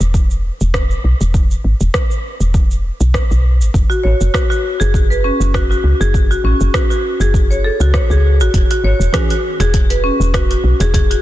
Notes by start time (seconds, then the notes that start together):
0.00 E1, cabasa
0.14 kick, cabasa
0.31 cabasa
0.61 E1, cabasa
0.74 kick, cross-stick, cabasa
0.91 cabasa
1.04 B1
1.21 E1, cabasa
1.34 kick, cabasa
1.51 cabasa
1.64 G#1
1.81 E1, cabasa
1.94 kick, cross-stick, cabasa
2.11 cabasa
2.40 E1, cabasa
2.54 kick, cabasa
2.71 cabasa
3.00 B1, cabasa
3.14 kick, cross-stick, cabasa
3.31 B1, cabasa
3.61 G#1, cabasa
3.74 F#1, kick, cabasa
3.90 F#4, cabasa
4.03 A1 C#5
4.21 F#1, cabasa
4.34 F#4, kick, cross-stick, cabasa
4.50 F#4, cabasa
4.80 F#1 G#4, cabasa
4.94 kick, cabasa
5.10 B4, cabasa
5.24 C#4
5.40 F#1, cabasa
5.54 F#4, kick, cross-stick, cabasa
5.71 F#4, cabasa
5.84 C#2
6.01 F#1 G#4, cabasa
6.14 kick, cabasa
6.31 F#4, cabasa
6.44 A1 C#4
6.61 F#1, cabasa
6.74 F#4, kick, cross-stick, cabasa
6.90 F#4, cabasa
7.20 F#1 G#4, cabasa
7.34 kick, cabasa
7.51 C#5, cabasa
7.64 A4
7.80 C#2 F#4, cabasa
7.94 C#5, kick, cross-stick, cabasa
8.10 C#2 G#4, cabasa
8.40 A1 F#4, cabasa
8.54 E1, kick, closed hi-hat, cabasa
8.71 F#4, closed hi-hat, cabasa
8.84 G#1 C#5
9.00 E1, cabasa
9.13 E3 C#4 F#4 G#4, kick, cross-stick, closed hi-hat, cabasa
9.30 F#4, closed hi-hat, cabasa
9.60 E1 G#4, cajon slap, closed hi-hat, cabasa
9.74 kick, closed hi-hat, cabasa
9.90 B4, cajon slap, closed hi-hat, cabasa
10.04 C#4
10.20 E1, cabasa
10.34 F#4, kick, cross-stick, closed hi-hat, cabasa
10.51 F#4, closed hi-hat, cabasa
10.64 B1
10.80 E1 G#4, cajon slap, closed hi-hat, cabasa
10.94 G#4, kick, cajon bass, closed hi-hat, cabasa
11.11 F#4, closed hi-hat, cabasa